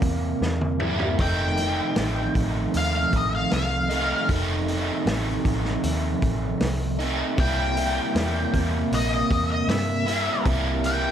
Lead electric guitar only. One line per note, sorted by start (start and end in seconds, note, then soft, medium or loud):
1.21 2.71 G5 loud
2.77 2.94 F5 medium
2.96 3.14 F5 medium
3.17 3.34 D#5 medium
3.35 3.52 F5 medium
3.54 4.28 F5 loud
7.40 8.89 G5 loud
8.95 9.12 D#5 loud
9.14 9.31 D#5 medium
9.32 9.50 D#5 medium
9.51 9.69 D#5 medium
9.70 10.44 E5 loud
10.86 11.12 G5 medium